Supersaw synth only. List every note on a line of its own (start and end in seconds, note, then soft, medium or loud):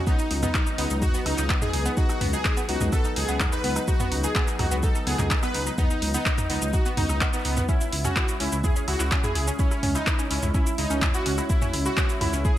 0.07 0.29 D#4 loud
0.43 0.65 D#4 loud
0.78 0.93 D#4 loud
1.02 1.17 F#4 medium
1.26 1.48 D#4 loud
1.62 1.84 G#4 medium
1.97 2.20 F#4 loud
2.33 2.55 G#4 medium
2.69 2.84 F#4 medium
2.93 3.07 A4 medium
3.16 3.38 G#4 loud
3.52 3.74 B4 medium
3.88 4.10 F#4 loud
4.24 4.46 G#4 medium
4.59 4.74 F#4 medium
4.83 4.98 A4 medium
5.07 5.29 G#4 loud
5.43 5.65 B4 medium
5.78 6.00 D#4 loud
6.14 6.36 D#4 medium
6.50 6.65 D#4 loud
6.73 6.88 F#4 medium
6.97 7.20 D#4 loud
7.33 7.55 B3 medium
7.69 7.91 E4 loud
8.05 8.27 F#4 medium
8.40 8.55 E4 medium
8.64 8.79 G#4 medium
8.88 9.10 F#4 loud
9.24 9.46 G#4 loud
9.59 9.81 C#4 loud
9.95 10.17 D#4 medium
10.31 10.46 C#4 medium
10.54 10.69 E4 medium
10.78 11.00 D#4 loud
11.14 11.36 F#4 loud
11.50 11.72 E4 loud
11.86 12.08 F#4 loud
12.21 12.36 E4 medium
12.45 12.58 G#4 medium